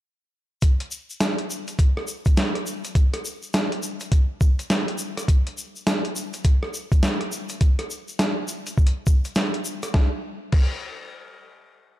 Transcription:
0.62 kick loud
0.62 closed hi-hat medium
0.62 shaker soft
0.80 closed hi-hat medium
0.91 shaker loud
1.10 shaker medium
1.20 snare loud
1.20 closed hi-hat medium
1.20 shaker soft
1.38 closed hi-hat soft
1.50 shaker loud
1.67 closed hi-hat soft
1.67 shaker medium
1.79 kick loud
1.79 closed hi-hat medium
1.79 shaker soft
1.97 cross-stick medium
2.07 shaker medium
2.25 kick loud
2.25 closed hi-hat soft
2.25 shaker medium
2.37 snare loud
2.37 closed hi-hat medium
2.37 shaker soft
2.55 cross-stick soft
2.55 closed hi-hat soft
2.66 shaker loud
2.84 closed hi-hat medium
2.84 shaker soft
2.95 kick loud
2.95 closed hi-hat medium
2.95 shaker soft
3.14 cross-stick medium
3.14 closed hi-hat medium
3.25 shaker loud
3.42 shaker medium
3.53 snare loud
3.53 closed hi-hat medium
3.53 shaker soft
3.72 closed hi-hat soft
3.83 shaker medium
4.00 closed hi-hat soft
4.00 shaker medium
4.12 kick loud
4.12 closed hi-hat medium
4.12 shaker soft
4.41 kick loud
4.41 shaker medium
4.59 closed hi-hat soft
4.59 shaker medium
4.70 snare loud
4.70 closed hi-hat medium
4.70 shaker soft
4.88 closed hi-hat soft
4.98 shaker loud
5.17 cross-stick medium
5.17 closed hi-hat medium
5.17 shaker medium
5.28 kick loud
5.28 closed hi-hat medium
5.28 shaker soft
5.47 closed hi-hat medium
5.58 shaker loud
5.76 shaker medium
5.87 snare loud
5.87 closed hi-hat medium
5.87 shaker soft
6.05 closed hi-hat soft
6.16 shaker loud
6.33 closed hi-hat soft
6.33 shaker medium
6.44 kick loud
6.44 closed hi-hat medium
6.44 shaker soft
6.63 cross-stick medium
6.74 shaker medium
6.92 kick loud
6.92 closed hi-hat soft
6.92 shaker medium
7.03 snare loud
7.03 closed hi-hat medium
7.03 shaker soft
7.21 cross-stick soft
7.21 closed hi-hat soft
7.32 shaker loud
7.49 closed hi-hat medium
7.49 shaker medium
7.61 kick loud
7.61 closed hi-hat medium
7.61 shaker soft
7.79 cross-stick medium
7.79 closed hi-hat medium
7.90 shaker loud
8.08 shaker medium
8.19 snare loud
8.19 closed hi-hat medium
8.19 shaker soft
8.48 shaker medium
8.67 closed hi-hat soft
8.67 shaker medium
8.78 kick loud
8.78 shaker soft
8.87 closed hi-hat medium
9.07 kick loud
9.07 shaker loud
9.25 closed hi-hat soft
9.25 shaker medium
9.35 snare loud
9.35 closed hi-hat medium
9.35 shaker soft
9.54 closed hi-hat soft
9.65 shaker loud
9.83 cross-stick medium
9.83 closed hi-hat medium
9.83 shaker medium
9.94 kick loud
9.94 snare medium
10.52 kick loud
10.52 crash medium

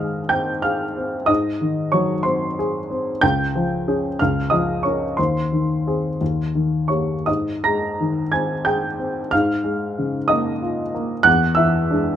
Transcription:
0.00 1.25 G#2 soft
0.00 0.19 D#3 soft
0.00 0.51 G#3 soft
0.00 1.27 D#5 soft
0.00 0.28 F5 soft
0.00 1.26 D#6 medium
0.00 0.31 F6 medium
0.29 0.83 C4 soft
0.29 0.61 G5 medium
0.29 0.63 G6 medium
0.62 1.16 G#4 soft
0.62 1.25 F5 soft
0.62 1.28 F6 medium
0.97 1.29 C4 soft
1.26 3.18 G#2 medium
1.26 1.88 D#5 medium
1.26 1.92 D#6 medium
1.61 2.12 D#3 soft
1.92 2.45 F#3 soft
1.92 2.22 C#5 soft
1.92 2.25 C#6 medium
2.23 2.77 C4 soft
2.23 2.55 C5 soft
2.23 2.56 C6 medium
2.59 3.10 G#4 soft
2.90 3.22 C4 soft
3.21 4.16 C#2 medium
3.21 4.15 G5 medium
3.21 4.18 G6 medium
3.56 4.06 F3 soft
3.88 4.16 C#4 soft
3.88 4.16 G#4 soft
4.19 5.16 C#2 medium
4.19 4.50 F5 medium
4.19 4.52 F6 medium
4.50 5.05 F3 soft
4.50 4.82 D#5 medium
4.50 4.84 D#6 medium
4.83 5.15 C#4 soft
4.83 5.15 A#4 soft
4.83 5.15 C#5 soft
4.83 5.17 C#6 medium
5.17 6.18 D#2 soft
5.17 6.86 C5 medium
5.17 6.89 C6 medium
5.53 6.07 D#3 soft
5.87 6.17 C4 soft
5.87 6.18 G#4 soft
6.21 7.25 D#2 soft
6.55 7.13 D#3 soft
6.88 7.23 A#3 soft
6.88 7.24 G4 soft
6.88 7.24 C#5 soft
6.88 7.26 C#6 medium
7.26 9.28 G#2 soft
7.26 7.62 D#5 soft
7.26 7.64 D#6 medium
7.64 8.21 G#3 soft
7.64 8.29 A#5 medium
7.64 8.33 A#6 medium
8.00 8.54 D#3 soft
8.32 8.86 C4 soft
8.32 8.64 G#5 soft
8.32 8.66 G#6 medium
8.65 9.19 G#4 soft
8.65 9.28 G5 medium
8.65 9.31 G6 medium
8.99 9.32 C4 soft
9.31 11.23 G#2 medium
9.31 10.26 F5 medium
9.31 10.30 F6 medium
9.64 10.16 G#3 soft
9.99 10.50 C#3 soft
10.28 10.82 A#3 soft
10.28 10.90 D#5 medium
10.28 10.93 D#6 medium
10.62 11.13 F4 soft
10.95 11.26 A#3 soft
11.23 12.16 E2 medium
11.23 11.55 F#5 medium
11.23 11.57 F#6 loud
11.55 12.10 E3 soft
11.55 12.16 E5 medium
11.55 12.16 E6 medium
11.90 12.16 G#3 soft
11.90 12.16 D4 soft

